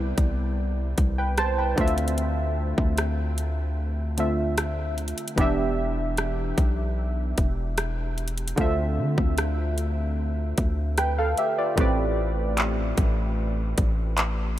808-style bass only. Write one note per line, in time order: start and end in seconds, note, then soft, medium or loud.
0.00 0.14 C2 loud
0.18 0.95 C2 loud
0.98 1.75 C2 loud
1.78 2.74 D2 loud
2.78 5.14 D2 loud
5.38 6.54 E1 loud
6.58 7.35 B1 loud
7.38 8.54 E1 medium
8.58 9.00 D2 loud
8.98 9.17 D3 medium
9.18 10.54 D2 loud
10.58 11.35 D2 loud
11.78 12.94 A1 loud
12.98 13.75 A1 loud
13.78 14.59 A1 loud